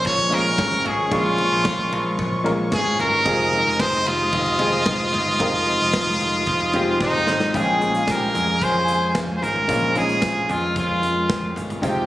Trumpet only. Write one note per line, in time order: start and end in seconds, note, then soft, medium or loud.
0.07 0.35 C#5 loud
0.34 0.88 A#4 loud
0.87 1.15 G#4 medium
1.13 2.46 F4 medium
2.74 2.98 G#4 loud
3.01 3.82 A#4 loud
3.80 4.09 C5 loud
4.07 7.01 F4 loud
7.02 7.58 D#4 medium
7.56 8.12 G#4 medium
8.10 8.64 A#4 loud
8.63 9.16 C5 loud
9.36 9.44 C5 medium
9.43 9.98 A#4 loud
9.97 10.53 G#4 loud
10.51 10.77 F4 medium
10.78 11.54 F4 medium